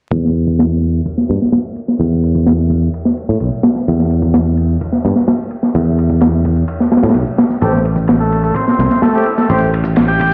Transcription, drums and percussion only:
0.11 kick, ride, shaker
0.24 snare
0.35 ride
0.47 kick, shaker
0.59 snare, ride, shaker
0.83 ride
0.95 shaker
1.06 kick, ride, shaker
1.17 snare, shaker
1.29 snare, ride
1.41 snare, shaker
1.52 snare, ride, shaker
1.65 shaker
1.76 ride
1.88 snare, shaker
2.00 kick, ride, shaker
2.12 shaker
2.23 ride
2.35 kick, shaker
2.46 snare, ride, shaker
2.70 kick, ride
2.82 shaker
2.94 ride, shaker
3.05 snare, shaker
3.17 ride
3.29 shaker
3.40 ride, shaker
3.53 shaker
3.63 snare, ride
3.76 snare, shaker
3.88 kick, ride, shaker
3.99 snare, shaker
4.10 ride
4.22 kick, shaker
4.34 snare, ride, shaker
4.46 shaker
4.57 ride
4.69 shaker
4.81 kick, ride, shaker
4.92 snare, shaker
5.04 snare, ride
5.16 snare, shaker
5.28 snare, ride, shaker
5.39 shaker
5.51 ride
5.63 snare, shaker
5.74 kick, ride, shaker
5.86 shaker
5.98 ride
6.09 kick, shaker
6.21 snare, ride, shaker
6.33 shaker
6.45 kick, ride
6.57 shaker
6.68 ride, shaker
6.80 snare, shaker
6.91 snare, ride
6.97 snare, ride
7.03 snare, ride, shaker
7.09 snare, ride
7.14 ride, shaker
7.27 shaker
7.38 snare, ride
7.50 snare, shaker
7.61 kick, ride, shaker
7.73 snare, shaker
7.85 ride
7.96 kick, shaker
8.07 snare, ride, shaker
8.20 shaker
8.32 ride
8.44 shaker
8.55 kick, ride, shaker
8.67 snare, shaker
8.79 snare, ride
8.90 snare, shaker
9.02 snare, ride, shaker
9.14 shaker
9.26 ride
9.38 snare, shaker
9.50 kick, ride, shaker
9.61 shaker
9.74 ride
9.84 kick, shaker
9.96 snare, ride, shaker
10.08 shaker
10.20 kick, ride

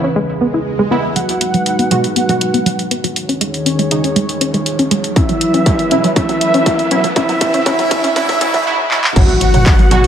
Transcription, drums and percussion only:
1.16 closed hi-hat
1.29 closed hi-hat
1.41 closed hi-hat
1.54 closed hi-hat
1.66 closed hi-hat
1.79 closed hi-hat
1.91 closed hi-hat
2.04 closed hi-hat
2.16 closed hi-hat
2.29 closed hi-hat
2.41 closed hi-hat
2.54 closed hi-hat
2.66 closed hi-hat
2.79 closed hi-hat
2.91 closed hi-hat
3.04 closed hi-hat
3.16 closed hi-hat
3.29 closed hi-hat
3.41 closed hi-hat
3.54 closed hi-hat
3.66 closed hi-hat
3.79 closed hi-hat
3.91 closed hi-hat
4.04 closed hi-hat
4.16 closed hi-hat
4.29 closed hi-hat
4.41 closed hi-hat
4.54 closed hi-hat
4.66 closed hi-hat
4.79 closed hi-hat
4.91 closed hi-hat
5.04 closed hi-hat
5.16 kick, closed hi-hat
5.29 closed hi-hat
5.41 closed hi-hat
5.54 closed hi-hat
5.66 kick, closed hi-hat
5.79 closed hi-hat
5.91 closed hi-hat
6.04 closed hi-hat
6.16 kick, closed hi-hat
6.29 closed hi-hat
6.41 closed hi-hat
6.54 closed hi-hat
6.66 kick, closed hi-hat
6.79 closed hi-hat
6.91 closed hi-hat
7.04 closed hi-hat
7.16 kick, closed hi-hat
7.29 closed hi-hat
7.41 kick, closed hi-hat
7.54 closed hi-hat
7.66 kick, closed hi-hat
7.79 closed hi-hat
7.91 kick, closed hi-hat
8.04 closed hi-hat
8.16 kick, closed hi-hat
8.29 kick, closed hi-hat
8.41 kick, closed hi-hat
8.54 kick, closed hi-hat
8.91 clap
9.04 clap
9.16 kick, closed hi-hat, crash
9.29 closed hi-hat
9.41 closed hi-hat
9.54 closed hi-hat, mid tom
9.66 kick, clap, closed hi-hat
9.79 closed hi-hat
9.91 closed hi-hat

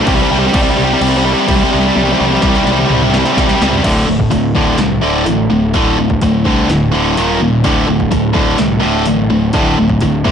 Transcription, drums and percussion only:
0.07 kick, crash
0.54 kick, crash
1.01 crash
1.48 kick, crash
1.96 high tom
2.08 high tom
2.20 high tom
2.31 high tom
2.42 kick, snare
2.55 snare
2.67 snare
2.78 mid tom
2.90 mid tom
3.02 mid tom
3.14 snare
3.26 snare
3.37 kick, snare
3.49 snare
3.62 snare
3.73 floor tom
3.84 kick, open hi-hat, crash
4.20 kick
4.32 kick, open hi-hat
4.55 kick
4.78 snare, open hi-hat
5.26 open hi-hat
5.74 kick, open hi-hat
6.10 kick
6.21 kick, open hi-hat
6.45 kick
6.69 snare, open hi-hat
7.17 open hi-hat
7.64 kick, open hi-hat
8.00 kick
8.12 kick, open hi-hat
8.35 kick
8.58 snare, open hi-hat
9.06 open hi-hat
9.53 kick, open hi-hat
9.90 kick
10.01 kick, open hi-hat
10.25 kick

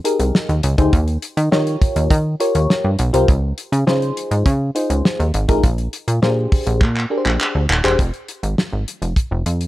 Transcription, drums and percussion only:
0.05 closed hi-hat
0.20 closed hi-hat
0.35 snare
0.49 closed hi-hat
0.63 closed hi-hat
0.78 kick, closed hi-hat
0.93 kick, closed hi-hat
1.08 closed hi-hat
1.22 closed hi-hat
1.37 closed hi-hat
1.52 snare
1.67 closed hi-hat
1.82 kick, closed hi-hat
1.96 closed hi-hat
2.10 kick, closed hi-hat
2.40 closed hi-hat
2.55 closed hi-hat
2.70 snare
2.99 closed hi-hat
3.14 closed hi-hat
3.28 kick, closed hi-hat
3.58 closed hi-hat
3.73 closed hi-hat
3.88 snare
4.02 closed hi-hat
4.17 closed hi-hat
4.31 closed hi-hat
4.46 kick, closed hi-hat
4.76 closed hi-hat
4.90 closed hi-hat
5.05 snare
5.20 closed hi-hat
5.34 closed hi-hat
5.49 kick, closed hi-hat
5.63 kick, closed hi-hat
5.78 closed hi-hat
5.93 closed hi-hat
6.08 closed hi-hat
6.23 snare
6.52 kick, open hi-hat
6.67 closed hi-hat
6.81 kick, clap
6.97 clap
7.26 clap
7.41 clap
7.70 clap
7.85 clap
7.99 kick, closed hi-hat
8.14 closed hi-hat
8.28 closed hi-hat
8.43 closed hi-hat
8.58 snare
8.88 closed hi-hat
9.02 closed hi-hat
9.16 kick, closed hi-hat
9.46 closed hi-hat
9.61 closed hi-hat

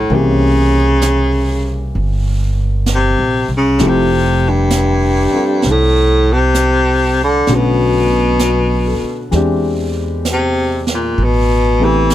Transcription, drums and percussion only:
0.09 brush sweep
1.02 brush sweep, snare, hi-hat pedal
1.94 brush sweep
2.86 brush sweep, snare, hi-hat pedal
3.79 brush sweep, snare
4.70 brush sweep, snare, hi-hat pedal
5.62 brush sweep, snare
6.54 brush sweep, snare, hi-hat pedal
7.47 brush sweep, snare
8.39 brush sweep, snare, hi-hat pedal
9.32 brush sweep, snare
10.25 brush sweep, snare, hi-hat pedal
10.87 snare
11.18 brush sweep
12.10 brush sweep, snare, hi-hat pedal

